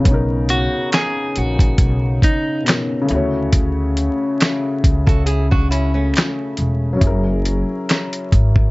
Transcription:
0.00 C#3 B3
0.05 B1 C#4, kick, closed hi-hat
0.11 D#4 A#4
0.49 F#4, closed hi-hat
0.92 G#4, finger snap, snare, clap, closed hi-hat
1.36 A#1 F#4, closed hi-hat
1.59 kick, closed hi-hat
1.78 B1, kick, closed hi-hat
2.22 D#4, kick, closed hi-hat
2.63 B2 B3 C#4, finger snap, closed hi-hat
2.68 D#4 A#4, snare, clap
3.02 C#3 A3
3.09 D2 E4 F#4, closed hi-hat
3.15 C#5
3.53 kick, closed hi-hat
3.97 closed hi-hat
4.40 finger snap, snare, clap, closed hi-hat
4.84 C#2, kick, closed hi-hat
5.06 F#4 A4, kick, closed hi-hat
5.26 E4 G#4, closed hi-hat
5.51 D4 F#4, kick
5.71 C#4 E4, closed hi-hat
5.94 A3 C#4
6.14 finger snap, clap, closed hi-hat
6.18 snare
6.57 E1, closed hi-hat
6.93 F#3 C#4
7.00 F#1 E4 G#4, kick, closed hi-hat
7.07 A#4
7.45 closed hi-hat
7.89 finger snap, snare, clap, closed hi-hat
8.13 closed hi-hat
8.32 G#1, kick, closed hi-hat
8.56 kick

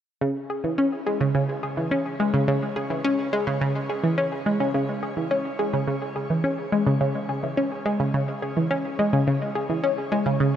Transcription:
0.21 C#3
0.50 G#4
0.64 E3
0.78 C#4
1.06 G#3
1.21 C#3
1.35 C#3
1.63 G#4
1.77 E3
1.91 C#4
2.20 G#3
2.34 C#3
2.48 C#3
2.76 G#4
2.90 E3
3.05 C#4
3.33 G#3
3.47 C#3
3.61 C#3
3.89 G#4
4.04 E3
4.18 C#4
4.46 G#3
4.60 C#3
4.74 C#3
5.03 G#4
5.17 E3
5.31 C#4
5.59 G#3
5.73 C#3
5.88 C#3
6.16 G#4
6.30 E3
6.44 C#4
6.72 G#3
6.87 C#3
7.01 C#3
7.29 G#4
7.43 E3
7.57 C#4
7.86 G#3
8.00 C#3
8.14 C#3
8.42 G#4
8.57 E3
8.71 C#4
8.99 G#3
9.13 C#3
9.27 C#3
9.55 G#4
9.70 E3
9.84 C#4
10.12 G#3
10.26 C#3
10.40 C#3

